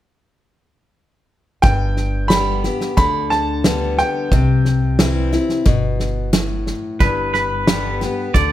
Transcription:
1.62 upright bass G1, steel-string acoustic guitar G2, upright piano G5, kick, snare
1.97 snare
2.28 steel-string acoustic guitar D3 G3 B3, upright piano B5, snare, hi-hat pedal
2.33 steel-string acoustic guitar G4
2.64 steel-string acoustic guitar B3 G4, snare
2.81 snare
2.97 upright bass D2, steel-string acoustic guitar D3, upright piano B5, kick, snare
3.30 upright piano A5, snare
3.64 steel-string acoustic guitar D3 G3 B3 G4, snare, hi-hat pedal
3.98 upright piano G5, snare
4.31 upright bass C2, steel-string acoustic guitar C3, kick, snare
4.65 snare
4.99 steel-string acoustic guitar E3 G3 C4 E4, snare, hi-hat pedal
5.32 steel-string acoustic guitar C4 E4, snare
5.49 snare
5.65 upright bass G1, steel-string acoustic guitar B2, kick, snare
6.00 snare
6.33 steel-string acoustic guitar A2, snare, hi-hat pedal
6.67 snare
7.00 upright bass G1, steel-string acoustic guitar G2, clean electric guitar B4, kick, snare
7.34 clean electric guitar B4, snare
7.67 steel-string acoustic guitar D3 G3 B3 G4, snare, hi-hat pedal
8.01 steel-string acoustic guitar B3 G4, snare
8.34 upright bass D2, steel-string acoustic guitar D3, clean electric guitar D5, kick, snare

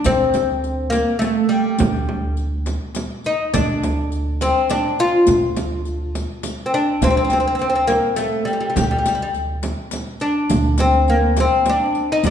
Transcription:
Already playing: cello D2
0.04 upright bass D2, oud C4, riq, frame drum
0.34 riq, frame drum
0.64 riq
0.90 oud A#3, riq, frame drum
1.19 oud A3, riq, frame drum
1.49 oud G3, riq
1.79 upright bass D2, riq, frame drum
2.09 frame drum
2.37 riq
2.66 riq, frame drum
2.95 riq, frame drum
3.24 oud D#4, riq
3.54 upright bass D2, oud D4, riq, frame drum
3.83 riq, frame drum
4.12 riq
4.41 oud C4, riq, frame drum
4.70 oud D4, riq, frame drum
4.99 oud F4, riq
5.27 upright bass D2, riq, frame drum
5.56 riq, frame drum
5.85 riq
6.15 riq, frame drum
6.43 riq, frame drum
6.66 oud C4
6.74 oud D4, riq
7.01 upright bass D2, oud C4, riq, frame drum
7.10 oud C4
7.17 oud C4
7.25 oud C4
7.30 oud C4, riq, frame drum
7.40 oud C4
7.47 oud C4
7.55 oud C4, riq
7.61 oud C4
7.70 oud C4
7.75 oud C4
7.87 oud A#3, riq, frame drum
8.16 oud A3, riq, frame drum
8.45 oud G3, riq
8.53 oud G3
8.60 oud G3
8.70 oud G3
8.76 upright bass D2, oud G3, riq, frame drum
8.83 oud G3
8.91 oud G3
8.99 oud G3
9.06 oud G3, riq, frame drum
9.15 oud G3
9.22 oud G3
9.34 riq
9.63 riq, frame drum
9.91 riq, frame drum
10.20 oud D4, riq
10.49 upright bass D2, riq, frame drum
10.78 oud C4, riq, frame drum
11.08 oud A#3, riq
11.37 oud C4, riq, frame drum
11.66 oud D4, riq, frame drum
11.95 riq
12.12 oud D#4
12.23 upright bass D2, oud D4, riq, frame drum

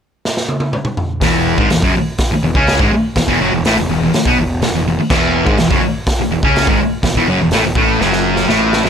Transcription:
0.25 snare
0.37 snare
0.49 high tom
0.60 high tom
0.73 mid tom
0.85 mid tom
0.97 floor tom
1.21 picked electric bass E1, distorted electric guitar E2 E3, kick, snare, open hi-hat
1.58 picked electric bass G#1, distorted electric guitar G#2 G#3, kick
1.70 picked electric bass E1, distorted electric guitar E2, snare, open hi-hat
1.82 picked electric bass F#1, distorted electric guitar F#2 F#3, kick
1.96 muted picked electric bass stroke, muted distorted electric guitar stroke
2.18 kick, snare, open hi-hat
2.31 muted picked electric bass stroke, muted distorted electric guitar stroke
2.43 picked electric bass E1, distorted electric guitar E2
2.55 picked electric bass C#2, distorted electric guitar C#3 C#4, kick
2.67 snare, open hi-hat
2.79 picked electric bass G#1, distorted electric guitar G#2 G#3, kick
2.90 muted picked electric bass stroke, muted distorted electric guitar stroke
3.16 picked electric bass E1, distorted electric guitar E2, kick, snare, open hi-hat
3.28 picked electric bass E1, distorted electric guitar E2 E3, kick
3.39 picked electric bass F#1, distorted electric guitar F#2 F#3
3.52 picked electric bass E1, distorted electric guitar E2
3.64 picked electric bass A1, distorted electric guitar A2 A3, snare, open hi-hat
3.75 picked electric bass E1, distorted electric guitar E2
3.87 picked electric bass E1, distorted electric guitar E2
3.99 picked electric bass E1, distorted electric guitar E2
4.12 muted picked electric bass stroke, muted distorted electric guitar stroke, snare, open hi-hat
4.25 picked electric bass B1, distorted electric guitar B2 B3, kick
4.37 picked electric bass E1, distorted electric guitar E2
4.62 picked electric bass E1, distorted electric guitar E2, snare, open hi-hat
4.74 picked electric bass E1, distorted electric guitar E2
4.86 picked electric bass E1, distorted electric guitar E2
4.99 muted distorted electric guitar stroke, muted picked electric bass stroke
5.10 picked electric bass E1, distorted electric guitar E2 E3, kick, snare, crash
5.46 picked electric bass G#1, distorted electric guitar G#2 G#3, kick
5.58 picked electric bass E1, distorted electric guitar E2, snare, open hi-hat
5.71 picked electric bass F#1, distorted electric guitar F#2 F#3, kick
5.82 muted picked electric bass stroke, muted distorted electric guitar stroke
6.07 kick, snare, open hi-hat
6.19 muted picked electric bass stroke, muted distorted electric guitar stroke
6.29 picked electric bass E1, distorted electric guitar E2
6.42 picked electric bass C#2, distorted electric guitar C#3 C#4, kick
6.56 snare, open hi-hat
6.67 picked electric bass G#1, distorted electric guitar G#2 G#3, kick
6.80 muted picked electric bass stroke, muted distorted electric guitar stroke
7.03 picked electric bass E1, distorted electric guitar E2, kick, snare, open hi-hat
7.15 picked electric bass E1, distorted electric guitar E2 E3, kick
7.28 picked electric bass F#1, distorted electric guitar F#2 F#3
7.41 picked electric bass E1, distorted electric guitar E2
7.51 picked electric bass A1, distorted electric guitar A2 A3, snare, open hi-hat
7.64 picked electric bass E1, distorted electric guitar E2
7.75 picked electric bass A1, distorted electric guitar A2 A3, kick
8.00 picked electric bass F#1, distorted electric guitar F#2 F#3, snare
8.13 snare
8.36 snare
8.48 picked electric bass A1, distorted electric guitar A2 A3, snare
8.73 snare
8.83 picked electric bass F#1, distorted electric guitar F#2 F#3, snare

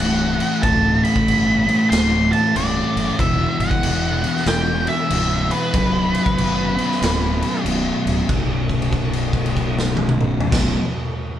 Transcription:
Already playing: distorted electric guitar A2
0.00 fingered electric bass C1, distorted electric guitar E3 A3, lead electric guitar F#5, crash
0.40 crash
0.63 fingered electric bass D1, distorted electric guitar A2 E3 A3, lead electric guitar A5, kick, crash
1.04 lead electric guitar B5, crash
1.16 kick
1.27 fingered electric bass G1, crash
1.67 distorted electric guitar A2 E3 A3, crash
1.90 fingered electric bass D1, lead electric guitar C6, snare, crash
2.32 lead electric guitar A5, crash
2.54 fingered electric bass C1, distorted electric guitar A2 E3 A3, lead electric guitar D5, crash
2.96 fingered electric bass F#1, crash
3.18 fingered electric bass E1, distorted electric guitar E2 B2 E3, lead electric guitar E5, kick, crash
3.59 fingered electric bass G1, lead electric guitar F#5, crash
3.71 kick
3.83 fingered electric bass E1, crash
4.22 distorted electric guitar E2 B2 E3, crash
4.37 snare
4.46 fingered electric bass E1, lead electric guitar G5, snare, crash
4.87 lead electric guitar E5, crash
5.09 fingered electric bass C1, distorted electric guitar E2 B2 E3, crash
5.51 lead electric guitar B4, crash
5.72 fingered electric bass B0, distorted electric guitar B1 F#2 B2, kick, crash
6.14 crash
6.26 kick
6.37 fingered electric bass F#1, crash
6.76 distorted electric guitar B1 F#2 B2, crash
6.92 snare
7.01 fingered electric bass D1, snare, crash
7.42 crash
7.63 fingered electric bass B0, distorted electric guitar B1 F#2 B2, crash
8.06 fingered electric bass D1, crash
8.27 fingered electric bass B0, distorted electric guitar B1 F#2, kick, crash
8.31 distorted electric guitar B2
8.69 kick, crash
8.82 crash
8.93 kick, crash
9.13 crash
9.33 kick, crash
9.46 crash
9.57 kick, crash
9.79 snare
9.97 high tom
10.09 mid tom
10.21 mid tom
10.40 floor tom
10.51 fingered electric bass B0, distorted electric guitar B1 F#2, kick, snare, crash
10.55 distorted electric guitar B2

